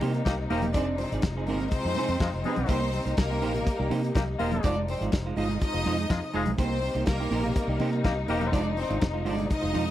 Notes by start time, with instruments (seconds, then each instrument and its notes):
Already playing: string section C3 G3 A#3 D#4
0.01 fingered electric bass C3, clean electric guitar A#3 D#4 G4 C5, open hi-hat, muted conga
0.14 muted clean electric guitar stroke, closed hi-hat
0.25 fingered electric bass C2, horn section A#3 D#4 G4 A#4, kick, snare, closed hi-hat, high conga
0.38 muted clean electric guitar stroke
0.49 fingered electric bass E1, horn section A#3 D#4 G4 A#4, clean electric guitar A#3 D#4 G4 C5, open hi-hat
0.62 muted clean electric guitar stroke, closed hi-hat, high conga
0.73 fingered electric bass F1, string section F3 G#3, clean electric guitar C4 D#4 G#4 C5, violin section D4 D5, kick, closed hi-hat, muted conga
0.88 muted clean electric guitar stroke
0.98 violin section C4 C5, muted clean electric guitar stroke, open hi-hat, muted conga
1.12 fingered electric bass G#1, clean electric guitar C4 D#4 G#4 D5, closed hi-hat
1.22 fingered electric bass F1, kick, snare, closed hi-hat, high conga
1.26 muted clean electric guitar stroke
1.37 clean electric guitar C4 D#4 G#4 C5
1.47 fingered electric bass G1, violin section A#3 A#4, clean electric guitar C4 D#4 G#4 C5, open hi-hat
1.60 muted clean electric guitar stroke, closed hi-hat
1.69 violin section C4 C5, muted clean electric guitar stroke, kick, closed hi-hat, low conga
1.85 fingered electric bass F2, clean electric guitar C4 D#4 G#4 C5
1.95 clean electric guitar C4 D#4 G#4 C5, open hi-hat, muted conga, low conga
2.08 fingered electric bass F2, muted clean electric guitar stroke, closed hi-hat
2.20 fingered electric bass F2, horn section G#3 D#4 F4 G#4, muted clean electric guitar stroke, kick, snare, closed hi-hat, high conga
2.34 fingered electric bass F1, muted clean electric guitar stroke
2.44 horn section G#3 C4 D#4 G#4, clean electric guitar C4 D#4 G#4 C5, open hi-hat, high conga
2.56 fingered electric bass B1, muted clean electric guitar stroke, closed hi-hat, high conga
2.67 fingered electric bass C2, string section G3 A#3, clean electric guitar A#3 D#4 G4 C5, violin section C4 C5, kick, closed hi-hat, muted conga
2.81 muted clean electric guitar stroke
2.93 muted clean electric guitar stroke, open hi-hat, muted conga
3.05 fingered electric bass C2, clean electric guitar A#3 D#4 G4 C5, closed hi-hat
3.17 fingered electric bass C2, violin section A#3 A#4, muted clean electric guitar stroke, kick, snare, closed hi-hat, high conga
3.30 clean electric guitar A#3 D#4 G4 C5
3.41 fingered electric bass A#1, clean electric guitar A#3 D#4 G4 C5, open hi-hat
3.54 muted clean electric guitar stroke, closed hi-hat, low conga
3.65 muted clean electric guitar stroke, kick, closed hi-hat
3.79 fingered electric bass C2, clean electric guitar A#3 D#4 G4 D5
3.90 fingered electric bass C3, clean electric guitar A#3 D#4 G4 C5, open hi-hat, muted conga
4.03 muted clean electric guitar stroke, closed hi-hat
4.15 fingered electric bass C2, horn section A#3 D#4 G4 A#4, kick, snare, closed hi-hat, high conga
4.27 muted clean electric guitar stroke
4.39 fingered electric bass E1, horn section A#3 D#4 F4 A#4, clean electric guitar A#3 D#4 G4 C5, open hi-hat
4.51 muted clean electric guitar stroke, closed hi-hat, high conga
4.63 fingered electric bass F1, string section C3 F3 G#3, clean electric guitar G#3 D#4 F4 C5, violin section D4 D5, kick, closed hi-hat, muted conga
4.77 muted clean electric guitar stroke
4.88 violin section C4 C5, muted clean electric guitar stroke, open hi-hat, muted conga
5.01 fingered electric bass G#1, clean electric guitar G#3 D#4 F4 D5, closed hi-hat
5.12 fingered electric bass F1, muted clean electric guitar stroke, kick, snare, closed hi-hat, high conga
5.26 clean electric guitar G#3 D#4 F4 C5
5.37 fingered electric bass G1, clean electric guitar G#3 D#4 F4 C5, violin section D#4 D#5, open hi-hat
5.49 muted clean electric guitar stroke, closed hi-hat, low conga
5.61 violin section D#4 D#5, muted clean electric guitar stroke, kick, closed hi-hat
5.73 fingered electric bass F1, clean electric guitar G#3 D#4 F4 C5
5.85 fingered electric bass F2, clean electric guitar G#3 D#4 F4 C5, open hi-hat, muted conga, low conga
5.98 muted clean electric guitar stroke, closed hi-hat
6.09 fingered electric bass F2, horn section G#3 D#4 F4 G#4, muted clean electric guitar stroke, kick, snare, closed hi-hat, high conga
6.23 muted clean electric guitar stroke
6.33 fingered electric bass F1, clean electric guitar G#3 D#4 F4 C5, horn section G#3 D#4 F4 G#4, open hi-hat
6.45 fingered electric bass B1, muted clean electric guitar stroke, closed hi-hat, high conga
6.58 fingered electric bass C2, string section G3 A#3 D#4, clean electric guitar A#3 D#4 G4 C5, violin section C4 C5, kick, closed hi-hat, muted conga
6.71 muted clean electric guitar stroke
6.82 muted clean electric guitar stroke, open hi-hat
6.95 fingered electric bass C2, clean electric guitar A#3 D#4 G4 C5, closed hi-hat
7.06 fingered electric bass C2, violin section A#3 A#4, muted clean electric guitar stroke, kick, snare, closed hi-hat, high conga
7.20 clean electric guitar A#3 D#4 G4 C5
7.31 fingered electric bass A#1, clean electric guitar A#3 D#4 G4 C5, open hi-hat
7.44 muted clean electric guitar stroke, closed hi-hat, low conga
7.56 muted clean electric guitar stroke, kick, closed hi-hat
7.68 fingered electric bass C2, clean electric guitar A#3 D#4 G4 D5
7.79 fingered electric bass C3, clean electric guitar A#3 D#4 G4 C5, open hi-hat, muted conga
7.92 muted clean electric guitar stroke, closed hi-hat
8.04 fingered electric bass C2, horn section A#3 D#4 G4 A#4, kick, snare, closed hi-hat, high conga
8.17 muted clean electric guitar stroke
8.28 fingered electric bass E1, clean electric guitar A#3 D#4 G4 C5, horn section A#3 D#4 G4 A#4, open hi-hat
8.41 muted clean electric guitar stroke, closed hi-hat, high conga
8.52 fingered electric bass F1, string section F3 G#3, clean electric guitar G#3 D#4 F4 C5, violin section D4 D5, kick, closed hi-hat, muted conga
8.64 muted clean electric guitar stroke
8.76 violin section C4 C5, muted clean electric guitar stroke, open hi-hat
8.89 fingered electric bass G#1, clean electric guitar G#3 D#4 F4 D5, closed hi-hat
9.00 fingered electric bass F1, muted clean electric guitar stroke, kick, snare, closed hi-hat, high conga
9.13 clean electric guitar G#3 D#4 F4 C5
9.25 fingered electric bass G1, clean electric guitar G#3 D#4 F4 C5, violin section D4 D5, open hi-hat
9.38 muted clean electric guitar stroke, closed hi-hat, low conga
9.49 violin section D#4 D#5, muted clean electric guitar stroke, kick, closed hi-hat
9.61 fingered electric bass F1, clean electric guitar G#3 D#4 F4 C5
9.73 fingered electric bass F2, clean electric guitar G#3 D#4 F4 C5, open hi-hat, muted conga, low conga
9.86 muted clean electric guitar stroke